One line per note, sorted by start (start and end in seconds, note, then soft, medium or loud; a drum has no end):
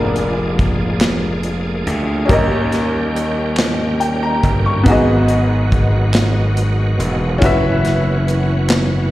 0.00 1.83 F1 loud
0.00 2.27 F3 medium
0.00 2.27 G#3 medium
0.00 2.24 A#3 medium
0.00 4.82 A#3 medium
0.00 2.25 D4 medium
0.00 2.28 D4 medium
0.00 2.26 F4 medium
0.00 2.26 G#4 medium
0.00 2.27 G#4 medium
0.00 2.27 D5 medium
0.16 closed hi-hat medium
0.59 kick medium
0.59 closed hi-hat soft
1.01 snare loud
1.01 clap loud
1.01 closed hi-hat loud
1.43 closed hi-hat medium
1.87 2.26 D2 medium
1.87 closed hi-hat medium
2.26 3.53 D#3 medium
2.26 4.80 C#4 medium
2.26 4.80 D#4 medium
2.26 4.81 G4 medium
2.26 kick loud
2.26 closed hi-hat loud
2.30 4.39 D#2 loud
2.30 7.38 D#3 medium
2.30 4.84 G3 medium
2.30 4.84 C#4 medium
2.30 4.84 G4 medium
2.30 4.82 A#4 medium
2.30 4.83 D#5 loud
2.72 snare soft
2.72 closed hi-hat medium
3.16 closed hi-hat soft
3.57 snare loud
3.57 clap medium
3.57 closed hi-hat loud
4.00 4.21 G5 medium
4.00 closed hi-hat soft
4.23 4.63 A#5 medium
4.43 4.83 G1 medium
4.43 kick medium
4.43 closed hi-hat medium
4.66 5.06 C#6 medium
4.83 6.95 G#1 loud
4.83 6.10 G#2 medium
4.83 7.40 G#3 medium
4.83 7.36 B3 medium
4.83 7.38 D#4 medium
4.83 7.38 F#4 medium
4.83 kick loud
4.83 closed hi-hat loud
4.88 7.40 F#3 medium
4.88 9.11 B3 medium
4.88 9.11 F#4 medium
4.88 7.39 G#4 medium
4.88 7.41 D#5 medium
5.28 closed hi-hat medium
5.72 kick medium
5.72 closed hi-hat soft
6.14 snare loud
6.14 clap medium
6.14 closed hi-hat medium
6.57 closed hi-hat medium
6.99 7.38 E1 medium
6.99 closed hi-hat medium
7.38 9.11 F#1 loud
7.38 9.11 C#4 medium
7.38 9.11 E4 medium
7.38 kick loud
7.38 closed hi-hat loud
7.42 9.11 E3 medium
7.42 9.11 F#3 medium
7.42 9.11 C#4 medium
7.42 9.11 F#4 medium
7.42 9.11 B4 medium
7.42 9.11 E5 medium
7.85 snare soft
7.85 closed hi-hat medium
8.28 closed hi-hat soft
8.69 snare loud
8.69 clap medium
8.69 closed hi-hat medium